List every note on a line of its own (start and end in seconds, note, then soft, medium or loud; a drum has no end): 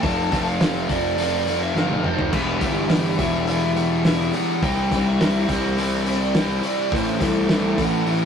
0.02 0.30 F1 loud
0.02 0.30 F2 loud
0.02 0.31 C3 loud
0.02 0.30 F3 loud
0.02 0.30 A3 loud
0.02 0.31 C4 loud
0.02 0.31 F4 loud
0.02 0.43 A5 loud
0.02 kick loud
0.02 open hi-hat medium
0.31 0.85 F1 loud
0.31 0.59 F2 medium
0.31 0.59 C3 medium
0.31 0.59 F3 medium
0.31 0.59 A3 medium
0.31 0.60 C4 medium
0.31 0.60 F4 loud
0.31 kick medium
0.31 snare soft
0.31 open hi-hat medium
0.46 0.89 F5 loud
0.60 0.87 F2 medium
0.60 0.88 C3 medium
0.60 0.87 F3 medium
0.60 0.88 A3 medium
0.60 0.89 C4 medium
0.60 0.89 F4 medium
0.60 snare loud
0.60 open hi-hat medium
0.88 1.71 F1 medium
0.88 1.16 F2 medium
0.88 1.17 C3 loud
0.88 1.16 F3 medium
0.88 1.17 A3 medium
0.88 1.18 C4 medium
0.88 1.18 F4 medium
0.88 1.57 D5 loud
0.88 kick medium
0.88 open hi-hat medium
1.17 1.45 F2 medium
1.17 1.46 C3 medium
1.17 1.45 F3 medium
1.17 1.46 A3 medium
1.17 1.47 C4 loud
1.17 1.47 F4 loud
1.17 open hi-hat medium
1.46 1.75 F2 medium
1.46 1.75 C3 medium
1.46 1.73 F3 medium
1.46 1.74 A3 medium
1.46 1.75 C4 medium
1.46 1.76 F4 medium
1.46 open hi-hat medium
1.62 1.76 E5 medium
1.75 2.01 G1 medium
1.75 2.03 F2 medium
1.75 2.03 C3 loud
1.75 2.02 F3 medium
1.75 2.02 A3 medium
1.75 2.03 C4 medium
1.75 2.03 F4 medium
1.75 2.05 F5 medium
1.75 snare medium
1.90 high tom medium
2.03 2.30 F1 medium
2.03 2.31 F2 medium
2.03 2.31 C3 medium
2.03 2.30 F3 medium
2.03 2.31 A3 medium
2.03 2.31 C4 medium
2.03 2.31 F4 medium
2.03 2.34 C5 medium
2.03 mid tom medium
2.18 floor tom medium
2.31 2.59 E1 loud
2.31 2.60 E2 medium
2.31 2.61 B2 loud
2.31 2.60 E3 medium
2.31 2.60 G3 loud
2.31 2.60 B3 loud
2.31 2.61 E4 loud
2.31 2.63 B4 loud
2.31 kick loud
2.31 crash loud
2.60 3.15 G1 loud
2.60 2.89 E2 medium
2.60 2.90 B2 medium
2.60 2.88 E3 medium
2.60 2.89 G3 medium
2.60 2.89 B3 medium
2.60 2.90 E4 medium
2.60 3.15 G4 medium
2.60 kick medium
2.60 open hi-hat medium
2.89 3.18 E2 medium
2.89 3.18 B2 medium
2.89 3.18 E3 medium
2.89 3.18 G3 medium
2.89 3.18 B3 medium
2.89 3.19 E4 medium
2.89 snare loud
2.89 open hi-hat medium
3.18 4.30 E1 loud
3.18 3.47 E2 medium
3.18 3.48 B2 medium
3.18 3.46 E3 medium
3.18 3.46 G3 medium
3.18 3.47 B3 medium
3.18 3.48 E4 medium
3.18 4.01 E5 loud
3.18 kick medium
3.18 open hi-hat medium
3.47 3.76 E2 medium
3.47 3.76 B2 medium
3.47 3.75 E3 loud
3.47 3.74 G3 loud
3.47 3.75 B3 loud
3.47 3.76 E4 loud
3.47 open hi-hat medium
3.75 4.04 E2 medium
3.75 4.06 B2 medium
3.75 4.04 E3 medium
3.75 4.04 G3 medium
3.75 4.05 B3 medium
3.75 4.06 E4 medium
3.75 open hi-hat medium
4.05 4.33 E2 medium
4.05 4.34 B2 medium
4.05 4.33 E3 medium
4.05 4.33 G3 medium
4.05 4.34 B3 medium
4.05 4.35 E4 medium
4.05 4.32 E5 medium
4.05 snare loud
4.05 open hi-hat medium
4.33 4.61 E2 medium
4.33 4.61 B2 medium
4.33 4.62 E3 medium
4.33 4.61 G3 medium
4.33 4.61 B3 medium
4.33 4.64 E4 loud
4.33 4.61 F#5 medium
4.33 open hi-hat medium
4.62 4.89 C2 loud
4.62 4.89 C3 medium
4.62 4.91 E3 medium
4.62 4.90 G3 loud
4.62 4.92 C4 loud
4.62 4.92 E4 loud
4.62 5.07 G5 loud
4.62 kick loud
4.62 open hi-hat medium
4.91 5.45 C2 loud
4.91 5.18 C3 medium
4.91 5.19 E3 medium
4.91 5.19 G3 medium
4.91 5.20 C4 medium
4.91 5.21 E4 loud
4.91 kick medium
4.91 snare soft
4.91 open hi-hat medium
5.07 5.50 E5 loud
5.19 5.47 C3 medium
5.19 5.48 E3 medium
5.19 5.48 G3 medium
5.19 5.49 C4 medium
5.19 5.50 E4 medium
5.19 snare loud
5.19 open hi-hat medium
5.48 6.59 C2 medium
5.48 5.76 C3 medium
5.48 5.77 E3 medium
5.48 5.77 G3 medium
5.48 5.77 C4 medium
5.48 5.79 E4 medium
5.48 6.23 C5 loud
5.48 kick medium
5.48 open hi-hat medium
5.77 6.04 C3 medium
5.77 6.05 E3 loud
5.77 6.05 G3 loud
5.77 6.05 C4 loud
5.77 6.06 E4 loud
5.77 open hi-hat medium
6.05 6.33 C3 medium
6.05 6.34 E3 medium
6.05 6.34 G3 medium
6.05 6.34 C4 medium
6.05 6.36 E4 medium
6.05 open hi-hat medium
6.21 6.35 D5 medium
6.34 6.61 C3 medium
6.34 6.63 E3 medium
6.34 6.62 G3 medium
6.34 6.63 C4 loud
6.34 6.64 E4 medium
6.34 6.61 C5 medium
6.34 snare loud
6.34 open hi-hat medium
6.62 6.90 C3 medium
6.62 6.91 E3 medium
6.62 6.90 G3 medium
6.62 6.90 C4 medium
6.62 6.93 E4 loud
6.62 6.93 D5 medium
6.62 open hi-hat medium
6.91 7.18 A1 loud
6.91 7.19 A2 medium
6.91 7.20 E3 medium
6.91 7.20 A3 medium
6.91 7.21 C4 loud
6.91 7.22 E4 medium
6.91 7.21 C5 medium
6.91 kick loud
6.91 open hi-hat medium
7.20 7.74 C2 medium
7.20 7.47 A2 medium
7.20 7.48 E3 medium
7.20 7.48 A3 medium
7.20 7.48 C4 medium
7.20 7.50 E4 medium
7.20 7.80 A4 medium
7.20 kick medium
7.20 snare soft
7.20 open hi-hat medium
7.48 7.75 A2 medium
7.48 7.77 E3 medium
7.48 7.76 A3 medium
7.48 7.78 C4 medium
7.48 7.78 E4 medium
7.48 snare loud
7.48 open hi-hat medium
7.77 8.25 A1 medium
7.77 8.05 A2 medium
7.77 8.06 E3 medium
7.77 8.06 A3 medium
7.77 8.06 C4 medium
7.77 8.08 E4 medium
7.77 8.25 F#5 loud
7.77 kick medium
7.77 open hi-hat medium
8.06 8.25 A2 medium
8.06 8.25 E3 loud
8.06 8.25 A3 loud
8.06 8.25 C4 loud
8.06 8.25 E4 loud
8.06 open hi-hat medium